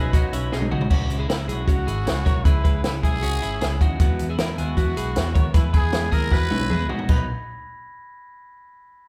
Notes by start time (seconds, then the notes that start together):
Already playing: B1 F#3 C#4 D#4 E4 G#4 B4 B6
0.13 D#3 F#3 C#4 D#4 F#4, kick, closed hi-hat
0.33 B1 C#4 E4, closed hi-hat
0.52 B1 B2 D#3 F#3 C#4 D#4 G#4, snare
0.62 high tom
0.71 B1 F#3 C#4 D#4 F#4, mid tom
0.81 floor tom
0.90 C#2 C#3 G#3 C#4 E4 F#4, kick, crash
1.09 C#2 G#3 C#4 E4, closed hi-hat
1.19 E4 G#4
1.28 C#2 C#3 G#3 C#4 E4 A#4, snare, closed hi-hat
1.48 B1 G#3 C#4 E4 F#4 G#4, closed hi-hat
1.66 C#2 C#3 G#3 C#4 E4 F#4, kick, closed hi-hat
1.87 G#1 E4 G#4, closed hi-hat
2.05 C#2 C#3 G#3 C#4 E4, snare, closed hi-hat
2.25 B1 G#3 C#4 E4 A#4 C#5, kick, closed hi-hat
2.44 C#2 C#3 G#3 C#4 E4 G#4 B4, kick, closed hi-hat
2.64 C#2 G#3 C#4 E4 G#4 B4, kick, closed hi-hat
2.83 C#2 C#3 G#3 C#4 E4, snare, closed hi-hat
3.02 B1 G#3 C#4 E4 G#4, kick, closed hi-hat
3.22 C#2 C#3 G#3 C#4 E4 F#4, closed hi-hat
3.42 G#1 C#4 E4, closed hi-hat
3.61 C#2 C#3 G#3 C#4 E4 G#4, snare, closed hi-hat
3.81 D#2 G#3 C#4 D#4 E4 F#4, kick, closed hi-hat
4.00 E2 E3 G#3 B3 E4 F#4, kick, closed hi-hat
4.19 E2 G#3 B3 E4, closed hi-hat
4.29 E4 G#4
4.38 E2 E3 G#3 B3 E4 A#4, snare, closed hi-hat
4.58 D#2 G#3 B3 E4 F#4 G#4 F#6, closed hi-hat
4.76 E2 E3 G#3 B3 E4 F#4, kick, closed hi-hat
4.97 B1 E4 G#4, closed hi-hat
5.16 E2 E3 G#3 B3 E4, snare, closed hi-hat
5.33 D#2 G#3 B3 E4 A#4 C#5, kick, closed hi-hat
5.54 E2 E3 G#3 B3 E4 G#4 B4 E6, kick, closed hi-hat
5.72 E2 G#3 B3 E4 G#4 B4 G#6, kick, closed hi-hat
5.76 G#4
5.92 E2 E3 G#3 B3 E4, snare, closed hi-hat
6.11 D#2 G#3 B3 E4 G#4 A#4 A#6, kick, closed hi-hat
6.30 E2 E3 G#3 B3 E4 F#4 B4 B6, kick, snare
6.51 B1 C#4 E4, high tom
6.61 high tom
6.69 E2 E3 G#3 B3 E4 G#4, mid tom
6.89 A#1 G#3 B3 D#4 E4 F#4, floor tom
6.99 floor tom
7.09 B1 B2 D#3 F#3 B3 D#4 A#4 B4 B5, kick, crash